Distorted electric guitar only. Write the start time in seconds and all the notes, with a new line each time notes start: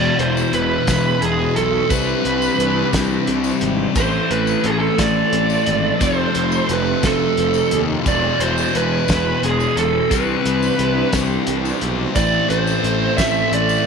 Already playing: E2 B2 E3
1.90 C3 G3 C4
3.95 A2 E3 A3
5.99 F2 C3
6.03 F3
8.04 E2 B2 E3
10.09 C3 G3 C4
12.16 A2 E3 A3